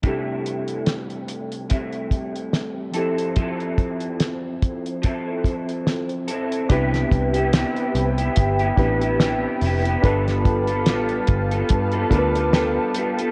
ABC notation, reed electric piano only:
X:1
M:4/4
L:1/8
Q:"Swing 16ths" 1/4=72
K:C
V:1 name="Reed electric piano"
[C,DEGA]6- [C,DEGA] [F,CEGA]- | [F,CEGA]6- [F,CEGA] z | [DEGB]4 z [DEGB]3 | [DFAB]4 z [DFA_B=B]3 |]